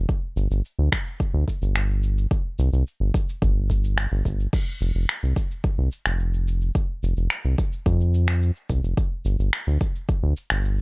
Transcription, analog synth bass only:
0, 0, Header, 1, 2, 480
1, 0, Start_track
1, 0, Tempo, 555556
1, 76, Time_signature, 4, 2, 24, 8
1, 9343, End_track
2, 0, Start_track
2, 0, Title_t, "Analog synth bass"
2, 0, Program_c, 0, 38
2, 313, Note_on_c, 0, 31, 96
2, 411, Note_off_c, 0, 31, 0
2, 438, Note_on_c, 0, 31, 90
2, 532, Note_off_c, 0, 31, 0
2, 679, Note_on_c, 0, 38, 78
2, 773, Note_off_c, 0, 38, 0
2, 1156, Note_on_c, 0, 38, 96
2, 1251, Note_off_c, 0, 38, 0
2, 1399, Note_on_c, 0, 31, 99
2, 1958, Note_off_c, 0, 31, 0
2, 2236, Note_on_c, 0, 36, 96
2, 2333, Note_off_c, 0, 36, 0
2, 2357, Note_on_c, 0, 36, 89
2, 2451, Note_off_c, 0, 36, 0
2, 2594, Note_on_c, 0, 31, 84
2, 2690, Note_off_c, 0, 31, 0
2, 2957, Note_on_c, 0, 31, 95
2, 3518, Note_off_c, 0, 31, 0
2, 3558, Note_on_c, 0, 31, 104
2, 3652, Note_off_c, 0, 31, 0
2, 3674, Note_on_c, 0, 31, 91
2, 3866, Note_off_c, 0, 31, 0
2, 4154, Note_on_c, 0, 29, 96
2, 4251, Note_off_c, 0, 29, 0
2, 4276, Note_on_c, 0, 29, 85
2, 4371, Note_off_c, 0, 29, 0
2, 4520, Note_on_c, 0, 36, 78
2, 4613, Note_off_c, 0, 36, 0
2, 4996, Note_on_c, 0, 36, 96
2, 5091, Note_off_c, 0, 36, 0
2, 5234, Note_on_c, 0, 29, 98
2, 5795, Note_off_c, 0, 29, 0
2, 6073, Note_on_c, 0, 29, 96
2, 6171, Note_off_c, 0, 29, 0
2, 6194, Note_on_c, 0, 29, 86
2, 6290, Note_off_c, 0, 29, 0
2, 6434, Note_on_c, 0, 36, 83
2, 6530, Note_off_c, 0, 36, 0
2, 6791, Note_on_c, 0, 41, 96
2, 7355, Note_off_c, 0, 41, 0
2, 7514, Note_on_c, 0, 36, 83
2, 7612, Note_off_c, 0, 36, 0
2, 7631, Note_on_c, 0, 29, 88
2, 7728, Note_off_c, 0, 29, 0
2, 7991, Note_on_c, 0, 31, 93
2, 8090, Note_off_c, 0, 31, 0
2, 8114, Note_on_c, 0, 31, 85
2, 8210, Note_off_c, 0, 31, 0
2, 8357, Note_on_c, 0, 38, 88
2, 8452, Note_off_c, 0, 38, 0
2, 8838, Note_on_c, 0, 38, 96
2, 8932, Note_off_c, 0, 38, 0
2, 9079, Note_on_c, 0, 31, 96
2, 9343, Note_off_c, 0, 31, 0
2, 9343, End_track
0, 0, End_of_file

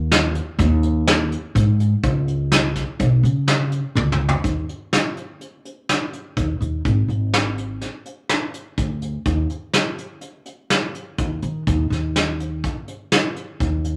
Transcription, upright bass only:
0, 0, Header, 1, 2, 480
1, 0, Start_track
1, 0, Tempo, 481928
1, 2025, Time_signature, 5, 2, 24, 8
1, 13911, End_track
2, 0, Start_track
2, 0, Title_t, "Upright bass"
2, 0, Program_c, 0, 32
2, 0, Note_on_c, 0, 39, 98
2, 378, Note_off_c, 0, 39, 0
2, 583, Note_on_c, 0, 39, 103
2, 1332, Note_off_c, 0, 39, 0
2, 1545, Note_on_c, 0, 44, 89
2, 1919, Note_off_c, 0, 44, 0
2, 2027, Note_on_c, 0, 37, 89
2, 2774, Note_off_c, 0, 37, 0
2, 2983, Note_on_c, 0, 35, 83
2, 3170, Note_off_c, 0, 35, 0
2, 3219, Note_on_c, 0, 49, 76
2, 3782, Note_off_c, 0, 49, 0
2, 3938, Note_on_c, 0, 37, 84
2, 4314, Note_off_c, 0, 37, 0
2, 4421, Note_on_c, 0, 39, 74
2, 4609, Note_off_c, 0, 39, 0
2, 6342, Note_on_c, 0, 39, 81
2, 6530, Note_off_c, 0, 39, 0
2, 6580, Note_on_c, 0, 39, 76
2, 6769, Note_off_c, 0, 39, 0
2, 6823, Note_on_c, 0, 32, 89
2, 7012, Note_off_c, 0, 32, 0
2, 7055, Note_on_c, 0, 32, 70
2, 7808, Note_off_c, 0, 32, 0
2, 8743, Note_on_c, 0, 38, 84
2, 9119, Note_off_c, 0, 38, 0
2, 9220, Note_on_c, 0, 39, 84
2, 9410, Note_off_c, 0, 39, 0
2, 11139, Note_on_c, 0, 39, 82
2, 11330, Note_off_c, 0, 39, 0
2, 11380, Note_on_c, 0, 51, 73
2, 11570, Note_off_c, 0, 51, 0
2, 11625, Note_on_c, 0, 39, 95
2, 11813, Note_off_c, 0, 39, 0
2, 11855, Note_on_c, 0, 39, 77
2, 12608, Note_off_c, 0, 39, 0
2, 13548, Note_on_c, 0, 39, 85
2, 13911, Note_off_c, 0, 39, 0
2, 13911, End_track
0, 0, End_of_file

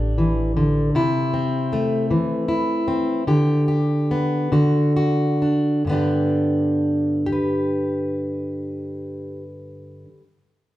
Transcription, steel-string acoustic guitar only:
0, 0, Header, 1, 2, 480
1, 0, Start_track
1, 0, Key_signature, 1, "major"
1, 0, Tempo, 763359
1, 591, Time_signature, 6, 3, 24, 8
1, 1557, Tempo, 811908
1, 2517, Tempo, 864553
1, 2997, Tempo, 937500
1, 5968, End_track
2, 0, Start_track
2, 0, Title_t, "Steel-string acoustic guitar"
2, 0, Program_c, 0, 25
2, 0, Note_on_c, 0, 62, 44
2, 0, Note_on_c, 0, 67, 54
2, 113, Note_on_c, 0, 52, 55
2, 352, Note_off_c, 0, 52, 0
2, 356, Note_on_c, 0, 50, 53
2, 564, Note_off_c, 0, 62, 0
2, 566, Note_off_c, 0, 67, 0
2, 592, Note_off_c, 0, 50, 0
2, 598, Note_on_c, 0, 48, 61
2, 602, Note_on_c, 0, 64, 60
2, 840, Note_on_c, 0, 60, 48
2, 1086, Note_on_c, 0, 57, 45
2, 1316, Note_off_c, 0, 48, 0
2, 1325, Note_on_c, 0, 52, 49
2, 1555, Note_off_c, 0, 64, 0
2, 1562, Note_on_c, 0, 64, 47
2, 1787, Note_off_c, 0, 60, 0
2, 1794, Note_on_c, 0, 60, 46
2, 2001, Note_off_c, 0, 60, 0
2, 2005, Note_off_c, 0, 52, 0
2, 2007, Note_off_c, 0, 57, 0
2, 2028, Note_on_c, 0, 50, 54
2, 2029, Note_off_c, 0, 64, 0
2, 2032, Note_on_c, 0, 67, 52
2, 2262, Note_off_c, 0, 67, 0
2, 2269, Note_on_c, 0, 67, 49
2, 2523, Note_on_c, 0, 59, 39
2, 2724, Note_off_c, 0, 67, 0
2, 2743, Note_off_c, 0, 50, 0
2, 2750, Note_on_c, 0, 50, 54
2, 2754, Note_on_c, 0, 66, 48
2, 2757, Note_off_c, 0, 59, 0
2, 2990, Note_off_c, 0, 66, 0
2, 2997, Note_on_c, 0, 66, 49
2, 3230, Note_on_c, 0, 62, 42
2, 3436, Note_off_c, 0, 66, 0
2, 3437, Note_off_c, 0, 62, 0
2, 3449, Note_on_c, 0, 43, 46
2, 3456, Note_off_c, 0, 50, 0
2, 3462, Note_on_c, 0, 50, 44
2, 3473, Note_on_c, 0, 59, 45
2, 3481, Note_on_c, 0, 62, 38
2, 3489, Note_on_c, 0, 67, 38
2, 4172, Note_off_c, 0, 59, 0
2, 4174, Note_off_c, 0, 67, 0
2, 4174, Note_on_c, 0, 67, 48
2, 4203, Note_off_c, 0, 62, 0
2, 4205, Note_on_c, 0, 71, 48
2, 5598, Note_off_c, 0, 43, 0
2, 5610, Note_off_c, 0, 50, 0
2, 5672, Note_off_c, 0, 67, 0
2, 5688, Note_off_c, 0, 71, 0
2, 5968, End_track
0, 0, End_of_file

